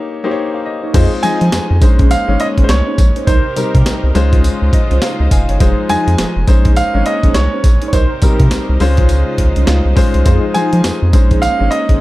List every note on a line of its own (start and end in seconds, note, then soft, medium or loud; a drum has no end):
0.00 0.24 A#3 loud
0.00 0.24 D#4 loud
0.00 0.24 G4 loud
0.00 0.31 C#5 loud
0.24 0.69 A#3 loud
0.24 0.69 D#4 medium
0.24 0.38 D#4 medium
0.24 0.69 G4 medium
0.24 0.38 G4 medium
0.24 0.30 C5 medium
0.24 0.38 C#5 loud
0.31 0.39 C#5 loud
0.54 0.65 F5 medium
0.66 0.82 D#5 medium
0.83 0.96 D#4 medium
0.83 0.96 G4 medium
0.83 0.96 C#5 medium
0.83 1.11 C#5 medium
0.93 1.08 F2 loud
0.93 1.81 F3 medium
0.93 1.15 G#3 medium
0.93 1.81 C4 medium
0.93 1.15 D#4 medium
0.93 1.81 D#4 medium
0.93 1.13 F4 loud
0.93 1.15 F4 medium
0.93 1.81 F4 medium
0.93 1.81 G#4 medium
0.93 1.13 G#4 medium
0.93 1.16 C5 loud
0.93 1.13 D#5 loud
0.93 kick loud
0.93 closed hi-hat medium
0.93 crash loud
0.93 tambourine medium
1.23 1.31 F3 soft
1.23 1.80 G#3 medium
1.23 1.81 D#4 medium
1.23 1.42 F4 medium
1.23 1.82 F4 medium
1.23 1.42 G#4 medium
1.23 1.42 D#5 loud
1.23 1.82 D#5 medium
1.23 1.77 G#5 loud
1.23 closed hi-hat medium
1.23 tambourine medium
1.41 1.50 F3 medium
1.41 closed hi-hat medium
1.52 1.60 F2 soft
1.52 snare loud
1.52 closed hi-hat medium
1.52 tambourine medium
1.71 1.83 F2 loud
1.81 2.16 A#1 loud
1.81 2.18 G#3 medium
1.81 3.26 G#3 medium
1.81 3.26 A#3 medium
1.81 2.18 C#4 medium
1.81 3.26 C#4 medium
1.81 2.18 D#4 medium
1.81 2.18 C5 medium
1.81 kick loud
1.81 closed hi-hat medium
1.81 tambourine medium
1.99 2.12 C#4 medium
1.99 2.12 D#4 medium
1.99 2.13 G#4 medium
1.99 2.13 C5 medium
1.99 kick loud
1.99 closed hi-hat medium
2.11 2.41 F5 loud
2.11 closed hi-hat medium
2.11 tambourine medium
2.28 2.37 G#1 medium
2.28 3.01 G#3 medium
2.28 3.01 C#4 medium
2.28 3.02 D#4 medium
2.28 3.02 C#5 medium
2.40 2.46 D#5 loud
2.40 closed hi-hat medium
2.58 2.66 G#1 medium
2.58 2.71 C#4 medium
2.58 2.71 D#4 medium
2.58 2.71 G#4 medium
2.58 2.71 C5 medium
2.58 kick medium
2.58 closed hi-hat soft
2.64 2.69 C5 medium
2.69 2.82 C2 medium
2.69 3.29 C#5 medium
2.69 snare loud
2.69 closed hi-hat medium
2.69 tambourine medium
2.87 3.00 C#4 medium
2.87 3.00 D#4 medium
2.87 3.00 G#4 medium
2.87 3.00 C5 medium
2.98 3.11 A#1 medium
2.98 kick loud
2.98 closed hi-hat medium
2.98 tambourine medium
3.16 3.29 C#4 medium
3.16 3.26 D#4 medium
3.16 3.29 G#4 medium
3.16 3.27 C5 medium
3.16 closed hi-hat soft
3.27 3.40 C2 loud
3.27 4.14 C3 medium
3.27 3.46 D#4 loud
3.27 6.44 D#4 medium
3.27 4.14 G4 medium
3.27 3.46 A#4 medium
3.27 4.14 A#4 medium
3.27 3.81 C5 medium
3.27 6.44 C5 medium
3.27 3.46 C5 loud
3.27 kick loud
3.27 closed hi-hat medium
3.27 tambourine medium
3.56 3.64 C3 soft
3.56 3.96 G3 medium
3.56 3.96 C4 medium
3.56 3.75 D#4 medium
3.56 3.96 D#4 medium
3.56 3.75 A#4 medium
3.56 3.96 A#4 medium
3.56 3.75 C5 medium
3.56 closed hi-hat medium
3.56 tambourine medium
3.75 3.83 C3 loud
3.75 kick medium
3.75 closed hi-hat medium
3.86 3.93 C2 soft
3.86 snare loud
3.86 closed hi-hat medium
3.86 tambourine medium
4.04 4.12 C2 medium
4.14 4.50 C#2 loud
4.14 5.59 C#3 medium
4.14 5.59 G#3 medium
4.14 5.09 G#3 loud
4.14 5.09 C#4 medium
4.14 5.59 F4 loud
4.14 5.09 F4 medium
4.14 5.03 C5 loud
4.14 closed hi-hat medium
4.14 tambourine medium
4.32 4.45 C#4 medium
4.32 4.45 F4 medium
4.32 4.46 C5 medium
4.32 kick loud
4.32 closed hi-hat medium
4.44 closed hi-hat medium
4.44 tambourine medium
4.62 4.70 C#2 loud
4.73 5.00 D#5 medium
4.73 kick medium
4.73 closed hi-hat medium
4.90 4.99 C2 loud
4.90 5.04 C#4 medium
4.90 5.04 F4 medium
4.90 5.04 C5 medium
4.90 closed hi-hat soft
5.02 5.29 F5 medium
5.02 snare loud
5.02 closed hi-hat medium
5.02 tambourine medium
5.20 5.28 C#2 loud
5.20 5.31 D#5 medium
5.31 5.44 F1 medium
5.31 5.48 F5 medium
5.31 5.58 G#5 medium
5.31 kick loud
5.31 closed hi-hat medium
5.31 tambourine medium
5.49 5.58 G1 loud
5.49 5.77 C#5 medium
5.49 closed hi-hat medium
5.60 5.74 F1 loud
5.60 6.47 F3 medium
5.60 5.81 G#3 medium
5.60 5.79 D#4 loud
5.60 5.81 D#4 medium
5.60 5.79 F4 medium
5.60 6.47 F4 medium
5.60 5.82 F4 medium
5.60 6.47 G#4 medium
5.60 5.79 G#4 loud
5.60 5.82 C5 loud
5.60 kick loud
5.60 closed hi-hat medium
5.60 tambourine medium
5.89 5.97 F2 soft
5.89 6.46 G#3 medium
5.89 6.08 D#4 medium
5.89 6.46 D#4 medium
5.89 6.08 F4 medium
5.89 6.48 F4 medium
5.89 6.08 G#4 medium
5.89 6.48 D#5 medium
5.89 6.44 G#5 loud
5.89 closed hi-hat medium
5.89 tambourine medium
6.07 6.16 F2 loud
6.07 closed hi-hat medium
6.18 6.26 F1 soft
6.18 snare loud
6.18 closed hi-hat medium
6.18 tambourine medium
6.36 6.45 F1 medium
6.47 6.82 A#1 loud
6.47 6.84 G#3 medium
6.47 7.91 G#3 medium
6.47 7.92 A#3 medium
6.47 7.91 C#4 medium
6.47 6.84 C#4 medium
6.47 6.84 D#4 medium
6.47 6.84 C5 loud
6.47 kick loud
6.47 closed hi-hat medium
6.47 tambourine medium
6.65 6.78 C#4 medium
6.65 6.78 D#4 medium
6.65 6.79 G#4 medium
6.65 6.79 C5 medium
6.65 kick medium
6.65 closed hi-hat medium
6.76 7.07 F5 loud
6.76 closed hi-hat medium
6.76 tambourine medium
6.94 7.03 G#1 medium
6.94 7.67 G#3 medium
6.94 7.68 C#4 medium
6.94 7.68 D#4 medium
6.94 7.68 C#5 medium
7.06 7.36 D#5 loud
7.06 closed hi-hat medium
7.23 7.32 G#1 medium
7.23 7.37 C#4 medium
7.23 7.37 D#4 medium
7.23 7.37 G#4 medium
7.23 7.37 C5 medium
7.23 kick medium
7.23 closed hi-hat soft
7.34 7.48 C2 loud
7.34 7.87 C#5 medium
7.34 snare loud
7.34 closed hi-hat medium
7.34 tambourine medium
7.53 7.66 C#4 medium
7.53 7.66 D#4 medium
7.53 7.66 G#4 medium
7.53 7.66 C5 medium
7.64 7.77 A#1 medium
7.64 kick loud
7.64 closed hi-hat medium
7.64 tambourine medium
7.82 7.95 C#4 medium
7.82 7.91 D#4 medium
7.82 7.95 G#4 medium
7.82 7.92 C5 medium
7.82 closed hi-hat soft
7.88 7.93 C#5 medium
7.92 8.06 C2 loud
7.92 8.80 C3 medium
7.92 8.12 D#4 loud
7.92 11.11 D#4 medium
7.92 8.80 G4 medium
7.92 8.12 A#4 medium
7.92 8.80 A#4 medium
7.92 8.47 C5 medium
7.92 8.12 C5 loud
7.92 11.10 C5 medium
7.92 kick loud
7.92 closed hi-hat medium
7.92 tambourine medium
8.22 8.30 C3 medium
8.22 8.62 G3 medium
8.22 8.62 C4 medium
8.22 8.41 D#4 medium
8.22 8.62 D#4 medium
8.22 8.41 A#4 medium
8.22 8.62 A#4 medium
8.22 8.41 C5 medium
8.22 kick loud
8.22 closed hi-hat medium
8.22 tambourine medium
8.40 8.48 C3 loud
8.40 kick loud
8.40 closed hi-hat medium
8.51 8.59 C2 soft
8.51 snare loud
8.51 closed hi-hat medium
8.51 tambourine medium
8.69 8.78 C2 medium
8.80 9.24 C#2 loud
8.80 10.25 C#3 medium
8.80 9.75 G#3 loud
8.80 10.25 G#3 medium
8.80 9.75 C#4 medium
8.80 10.25 F4 medium
8.80 9.75 F4 loud
8.80 9.75 C5 loud
8.80 open hi-hat medium
8.80 tambourine medium
8.97 9.11 C#4 medium
8.97 9.11 F4 medium
8.97 9.11 C5 medium
8.97 kick loud
8.97 closed hi-hat soft
9.09 closed hi-hat medium
9.09 tambourine medium
9.38 9.52 C#2 loud
9.38 kick medium
9.38 closed hi-hat medium
9.56 9.65 C2 medium
9.56 9.70 C#4 medium
9.56 9.70 F4 medium
9.56 9.70 C5 medium
9.56 closed hi-hat soft
9.67 9.81 C#2 medium
9.67 10.22 F5 medium
9.67 snare loud
9.67 closed hi-hat medium
9.67 tambourine medium
9.85 9.94 C2 medium
9.96 10.17 G#3 loud
9.96 10.18 C#4 medium
9.96 10.18 F4 medium
9.96 10.18 C5 loud
9.96 kick loud
9.96 open hi-hat medium
9.96 tambourine medium
10.14 10.23 C2 loud
10.14 closed hi-hat soft
10.25 10.39 F2 loud
10.25 11.12 F3 medium
10.25 10.47 G#3 medium
10.25 10.47 D#4 medium
10.25 10.45 D#4 loud
10.25 10.47 F4 medium
10.25 10.45 F4 medium
10.25 11.13 F4 medium
10.25 11.13 G#4 loud
10.25 10.45 G#4 loud
10.25 10.47 C5 loud
10.25 kick loud
10.25 closed hi-hat medium
10.25 tambourine medium
10.54 10.62 F3 medium
10.54 11.11 G#3 medium
10.54 10.74 D#4 medium
10.54 11.12 D#4 medium
10.54 10.74 F4 medium
10.54 11.14 F4 medium
10.54 10.74 G#4 medium
10.54 11.13 C5 medium
10.54 11.09 G#5 loud
10.54 closed hi-hat medium
10.54 tambourine medium
10.73 10.82 F3 loud
10.73 closed hi-hat medium
10.84 10.92 F2 soft
10.84 snare loud
10.84 closed hi-hat medium
10.84 tambourine medium
11.02 11.15 F2 loud
11.13 11.48 A#1 loud
11.13 11.49 G#3 medium
11.13 12.01 G#3 medium
11.13 12.01 A#3 medium
11.13 12.01 C#4 medium
11.13 11.50 C#4 medium
11.13 11.50 D#4 medium
11.13 11.50 C5 medium
11.13 kick loud
11.13 closed hi-hat medium
11.13 tambourine medium
11.31 11.44 C#4 medium
11.31 11.44 D#4 medium
11.31 11.44 G#4 medium
11.31 11.44 C5 medium
11.31 kick medium
11.31 closed hi-hat medium
11.42 11.69 F5 loud
11.42 closed hi-hat medium
11.42 tambourine medium
11.59 11.69 G#1 medium
11.59 12.01 G#3 medium
11.59 12.01 C#4 medium
11.59 12.01 D#4 medium
11.59 12.01 C#5 medium
11.71 11.98 D#5 loud
11.71 closed hi-hat medium
11.89 11.98 G#1 loud
11.89 12.01 C#4 medium
11.89 12.01 D#4 medium
11.89 12.01 G#4 medium
11.89 12.01 C5 medium
11.89 kick medium
11.89 closed hi-hat soft